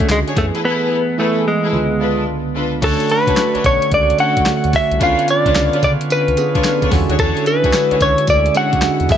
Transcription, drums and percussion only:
0.00 kick
0.09 snare, clap, closed hi-hat
0.28 closed hi-hat
0.37 kick, snare, closed hi-hat
0.55 closed hi-hat
2.82 kick, closed hi-hat, crash
3.00 closed hi-hat
3.10 closed hi-hat
3.27 kick, closed hi-hat
3.37 snare, clap, closed hi-hat
3.55 closed hi-hat
3.64 kick, closed hi-hat
3.82 closed hi-hat
3.92 kick, closed hi-hat
4.10 closed hi-hat
4.19 closed hi-hat
4.37 kick, closed hi-hat
4.46 snare, clap, closed hi-hat
4.64 closed hi-hat
4.73 kick, snare, open hi-hat
4.92 closed hi-hat
5.01 kick, closed hi-hat, tambourine
5.19 closed hi-hat
5.28 closed hi-hat, tambourine
5.46 kick, closed hi-hat
5.55 snare, clap, closed hi-hat, tambourine
5.73 closed hi-hat
5.83 kick, closed hi-hat, tambourine
6.01 closed hi-hat
6.10 closed hi-hat, tambourine
6.28 closed hi-hat
6.37 closed hi-hat, tambourine
6.55 kick, closed hi-hat
6.64 snare, clap, closed hi-hat, tambourine
6.82 kick, closed hi-hat
6.91 kick, snare, open hi-hat
7.10 closed hi-hat
7.19 kick, closed hi-hat, tambourine
7.37 closed hi-hat
7.46 closed hi-hat, tambourine
7.64 kick, closed hi-hat
7.73 snare, clap, closed hi-hat, tambourine
7.91 closed hi-hat
8.00 kick, closed hi-hat, tambourine
8.18 closed hi-hat
8.27 kick, closed hi-hat, tambourine
8.46 closed hi-hat
8.55 closed hi-hat, tambourine
8.73 kick, closed hi-hat
8.82 snare, clap, closed hi-hat, tambourine
9.00 closed hi-hat
9.09 kick, snare, open hi-hat

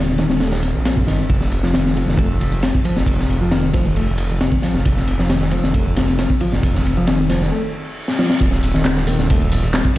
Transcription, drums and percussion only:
0.18 snare, ride, tambourine, high conga
0.30 snare, ride, tambourine, high conga
0.40 snare, ride, tambourine
0.52 snare, ride
0.63 ride, tambourine
0.74 tambourine, low conga
0.85 snare, ride, tambourine
0.97 kick, low conga
1.07 snare, ride, tambourine
1.19 tambourine
1.29 kick, ride, tambourine
1.41 snare
1.51 ride, tambourine
1.63 snare, tambourine
1.73 snare, ride, tambourine
1.86 snare
1.96 ride, tambourine, high bongo
2.07 snare, tambourine, high conga
2.18 kick, ride, tambourine
2.40 ride, tambourine, low conga
2.52 ride, tambourine, high conga
2.62 snare, ride, tambourine
2.75 kick
2.84 ride, tambourine, low conga
2.96 snare, tambourine, high conga
3.06 kick, ride, tambourine
3.19 snare
3.29 ride, tambourine
3.41 tambourine
3.51 snare, ride, tambourine
3.73 kick, ride, tambourine, high bongo, high conga
3.85 tambourine, high conga
3.96 ride, tambourine
4.07 ride
4.18 ride, tambourine
4.29 tambourine, low conga
4.41 snare, ride, tambourine
4.52 kick, low conga
4.62 snare, ride, tambourine
4.74 snare, tambourine
4.85 kick, ride, tambourine
4.97 snare
5.07 ride, tambourine
5.19 snare, tambourine
5.29 snare, ride, tambourine
5.41 snare
5.51 ride, tambourine, high bongo
5.63 snare, tambourine, high conga
5.74 kick, ride, tambourine
5.96 snare, ride, tambourine, low conga
6.08 ride, tambourine, high conga
6.18 snare, ride, tambourine
6.30 kick
6.40 ride, tambourine, low conga
6.52 snare, tambourine, high conga
6.63 kick, ride, tambourine
6.75 snare, low conga
6.85 ride, tambourine, high bongo
6.97 tambourine
7.07 snare, ride, tambourine
7.29 snare, ride, tambourine, high bongo, high conga
7.41 snare, tambourine, high conga
8.08 snare
8.19 snare
8.30 snare
8.41 kick, ride, tambourine
8.52 snare
8.63 open hi-hat, ride, tambourine, high bongo
8.74 snare, tambourine
8.85 snare, clap, ride, tambourine
8.97 snare
9.07 open hi-hat, ride, tambourine, high bongo, high conga
9.19 snare, tambourine, high conga
9.30 kick, ride, tambourine
9.42 high bongo
9.51 open hi-hat, ride, tambourine, low conga
9.63 ride, tambourine, high bongo, high conga
9.74 snare, clap, ride, tambourine
9.85 kick

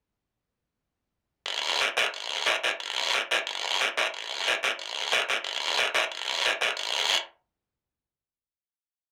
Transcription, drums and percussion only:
1.46 long guiro
1.80 short guiro
1.97 short guiro
2.14 long guiro
2.46 short guiro
2.64 short guiro
2.80 long guiro
3.13 short guiro
3.31 short guiro
3.47 long guiro
3.80 short guiro
3.97 short guiro
4.14 long guiro
4.47 short guiro
4.63 short guiro
4.79 long guiro
5.12 short guiro
5.29 short guiro
5.44 long guiro
5.78 short guiro
5.94 short guiro
6.12 long guiro
6.45 short guiro
6.61 short guiro
6.77 long guiro

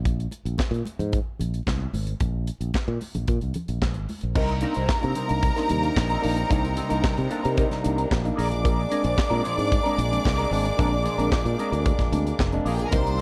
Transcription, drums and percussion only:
0.05 kick, closed hi-hat, muted conga
0.20 closed hi-hat
0.31 closed hi-hat, muted conga
0.46 closed hi-hat
0.58 kick, snare, clap, high conga
0.74 closed hi-hat
0.85 closed hi-hat, muted conga
0.99 closed hi-hat, low conga
1.12 kick, closed hi-hat, muted conga
1.40 closed hi-hat, low conga
1.54 closed hi-hat
1.67 kick, snare, clap, high conga
1.94 open hi-hat, high conga
2.07 closed hi-hat
2.20 kick, closed hi-hat, muted conga
2.47 closed hi-hat
2.61 closed hi-hat
2.74 kick, snare, clap, high conga
3.01 open hi-hat, muted conga
3.15 closed hi-hat, low conga
3.28 kick, closed hi-hat, muted conga
3.41 closed hi-hat
3.54 closed hi-hat, low conga
3.68 closed hi-hat
3.82 kick, snare, clap, high conga
3.94 closed hi-hat
4.09 open hi-hat, high conga
4.21 closed hi-hat
4.35 kick, crash
4.49 closed hi-hat
4.61 closed hi-hat
4.74 closed hi-hat
4.89 kick, snare, clap
5.03 closed hi-hat
5.15 closed hi-hat
5.29 closed hi-hat
5.43 kick, closed hi-hat
5.56 snare, closed hi-hat
5.69 closed hi-hat
5.83 closed hi-hat
5.96 kick, snare, clap
6.10 closed hi-hat
6.23 open hi-hat
6.37 closed hi-hat
6.51 kick, closed hi-hat
6.65 closed hi-hat
6.77 closed hi-hat
6.90 closed hi-hat
7.04 kick, snare, clap
7.17 closed hi-hat
7.31 closed hi-hat
7.45 closed hi-hat
7.57 kick, closed hi-hat
7.71 snare, closed hi-hat
7.84 closed hi-hat
7.98 closed hi-hat
8.11 kick, snare, clap
8.25 closed hi-hat
8.39 open hi-hat
8.52 closed hi-hat
8.65 kick, closed hi-hat
8.92 closed hi-hat
9.04 closed hi-hat
9.18 kick, snare, clap
9.45 closed hi-hat
9.59 closed hi-hat
9.72 kick, closed hi-hat
9.86 closed hi-hat
9.99 closed hi-hat
10.13 closed hi-hat
10.25 kick, snare, clap
10.39 closed hi-hat
10.53 open hi-hat
10.65 closed hi-hat
10.79 kick, closed hi-hat
11.05 closed hi-hat
11.19 closed hi-hat
11.32 kick, snare, clap
11.46 closed hi-hat
11.59 closed hi-hat
11.73 closed hi-hat
11.86 kick, closed hi-hat
11.99 kick, snare, closed hi-hat
12.13 closed hi-hat
12.27 closed hi-hat
12.39 kick, snare, clap
12.52 closed hi-hat
12.66 open hi-hat
12.79 closed hi-hat
12.92 kick, closed hi-hat, muted conga
13.07 closed hi-hat

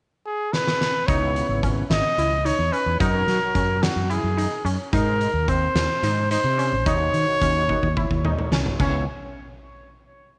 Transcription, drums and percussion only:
0.53 snare
0.67 snare
0.81 snare
1.08 kick, closed hi-hat
1.36 closed hi-hat
1.63 kick, closed hi-hat
1.91 snare, closed hi-hat
2.18 closed hi-hat
2.46 closed hi-hat
2.73 closed hi-hat
3.00 kick, closed hi-hat
3.28 snare, closed hi-hat
3.55 kick, closed hi-hat
3.83 snare, closed hi-hat
4.11 closed hi-hat
4.38 closed hi-hat
4.66 closed hi-hat
4.93 kick, closed hi-hat
5.21 closed hi-hat
5.48 kick, closed hi-hat
5.76 snare, closed hi-hat
6.03 snare, closed hi-hat
6.31 closed hi-hat
6.59 closed hi-hat
6.86 kick, closed hi-hat
7.14 closed hi-hat
7.42 kick, closed hi-hat
7.69 kick
7.83 kick
7.97 kick
8.11 kick
8.25 mid tom
8.39 mid tom
8.52 snare
8.66 floor tom
8.80 kick, crash

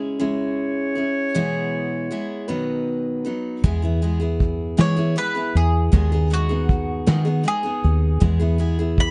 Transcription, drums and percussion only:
3.64 kick, closed hi-hat
4.02 closed hi-hat
4.40 kick, closed hi-hat
4.78 snare, closed hi-hat
5.17 closed hi-hat
5.55 closed hi-hat
5.93 kick, closed hi-hat
6.31 closed hi-hat
6.69 kick, closed hi-hat
7.07 snare, closed hi-hat
7.46 closed hi-hat
7.84 closed hi-hat
8.22 kick, closed hi-hat
8.60 closed hi-hat
8.98 kick, closed hi-hat

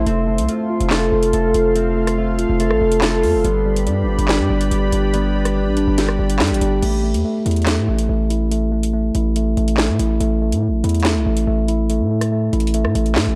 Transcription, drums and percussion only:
0.06 closed hi-hat
0.38 closed hi-hat
0.49 closed hi-hat
0.80 closed hi-hat
0.90 snare, clap
1.23 closed hi-hat
1.33 closed hi-hat
1.54 closed hi-hat
1.76 closed hi-hat
2.07 cross-stick, closed hi-hat
2.39 closed hi-hat
2.60 closed hi-hat
2.71 cross-stick
2.92 closed hi-hat
3.01 snare, clap, closed hi-hat
3.23 open hi-hat
3.44 closed hi-hat
3.76 closed hi-hat
3.87 closed hi-hat
4.19 closed hi-hat
4.28 snare, clap
4.61 closed hi-hat
4.71 closed hi-hat
4.92 closed hi-hat
5.14 closed hi-hat
5.45 cross-stick, closed hi-hat
5.77 closed hi-hat
5.98 snare, closed hi-hat
6.09 cross-stick
6.30 closed hi-hat
6.39 snare, clap, closed hi-hat
6.47 closed hi-hat
6.54 closed hi-hat
6.61 closed hi-hat
6.83 closed hi-hat, crash
7.14 closed hi-hat
7.46 closed hi-hat
7.51 closed hi-hat
7.56 closed hi-hat
7.62 closed hi-hat
7.66 snare, clap, closed hi-hat
7.99 closed hi-hat
8.30 closed hi-hat
8.51 closed hi-hat
8.83 closed hi-hat
9.15 closed hi-hat
9.36 closed hi-hat
9.57 closed hi-hat
9.68 closed hi-hat
9.78 snare, clap
9.99 closed hi-hat
10.21 closed hi-hat
10.52 closed hi-hat
10.84 closed hi-hat
10.89 closed hi-hat
10.95 closed hi-hat
11.00 closed hi-hat
11.04 snare, clap, closed hi-hat
11.37 closed hi-hat
11.68 closed hi-hat
11.90 closed hi-hat
12.21 cross-stick, closed hi-hat
12.53 closed hi-hat
12.60 closed hi-hat
12.67 closed hi-hat
12.74 closed hi-hat
12.85 cross-stick
12.95 closed hi-hat
13.06 closed hi-hat
13.16 snare, clap

